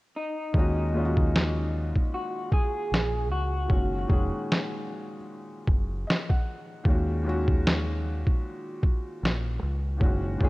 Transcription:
0.17 D#4
0.53 D#2 A#2 D#3 G#3, kick
0.57 C#4 F#4
0.92 A#2 D#3 G#3
0.97 C#4 F4
1.05 F#4
1.17 kick
1.36 snare
1.96 kick
2.14 F#4
2.52 G#4, kick
2.92 A#1, snare
3.31 C#2 F#4
3.66 F#1 A#2 D#3 G#3, kick
3.71 C#4 F#4
4.07 F1 A#2 D#3 G#3, kick
4.11 C#4 G#4
4.52 snare
5.67 F#1, kick
6.07 D#5, snare
6.29 F#5, kick
6.84 D#2 A#2 D#3 G#3, kick
6.89 C#4 F#4
7.23 A#2 D#3 G#3
7.27 C#4 F#4
7.48 kick
7.67 snare
8.27 kick
8.83 kick
9.23 A#1, snare
9.63 C#2
9.97 A#2 D#3 G#3, kick
10.01 F#1 C#4 F#4
10.38 F#1 A#2 D#3 G#3, kick
10.43 C#4 G#4

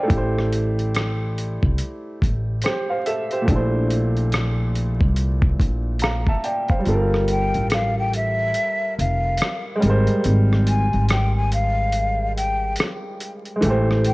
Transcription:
Already playing: C5 D5 D#5 F5 G5 G#5 A#5
0.03 A3
0.08 A1 E4, kick, closed hi-hat
0.13 G4
0.17 C5
0.39 cross-stick
0.53 closed hi-hat
0.79 closed hi-hat
0.94 cross-stick, closed hi-hat
1.38 closed hi-hat
1.63 C2, kick
1.78 closed hi-hat
2.22 A1, kick, closed hi-hat
2.62 G4 C5, closed hi-hat
2.66 cross-stick
2.90 C5 F5
3.06 A4 E5, closed hi-hat
3.31 G4 C5, closed hi-hat
3.42 A#2 A3
3.48 A#1 D4, kick, closed hi-hat
3.52 E4 C5
3.90 closed hi-hat
4.17 closed hi-hat
4.32 cross-stick, closed hi-hat
4.75 closed hi-hat
5.00 C2, kick
5.16 closed hi-hat
5.42 kick
5.60 A#1, kick, closed hi-hat
5.99 F5 A#5, closed hi-hat
6.04 cross-stick
6.26 E5 A5, kick
6.44 D5 G5, closed hi-hat
6.69 C5 F5, kick, closed hi-hat
6.79 G3
6.84 G1 F4, closed hi-hat
6.89 A4
6.93 A#4
7.14 cross-stick
7.28 G5, closed hi-hat
7.54 A1, closed hi-hat
7.70 F5, cross-stick, closed hi-hat
7.99 G5
8.13 E5, closed hi-hat
8.54 closed hi-hat
8.99 F1 F5, closed hi-hat
9.37 closed hi-hat
9.42 cross-stick
9.76 G#3
9.80 G#1 G3, closed hi-hat
9.85 A#4
9.90 C5
10.07 closed hi-hat
10.24 G#1, closed hi-hat
10.53 cross-stick
10.67 G#5, closed hi-hat
10.93 G#1, closed hi-hat
11.08 G5, cross-stick, closed hi-hat
11.37 G#5
11.52 F5, closed hi-hat
11.92 closed hi-hat
12.37 G5, closed hi-hat
12.76 closed hi-hat
12.80 cross-stick
13.20 closed hi-hat
13.45 closed hi-hat
13.56 G#3
13.61 A1 E3 A3, closed hi-hat
13.65 G4
13.70 C5
13.91 cross-stick
14.05 G5, closed hi-hat

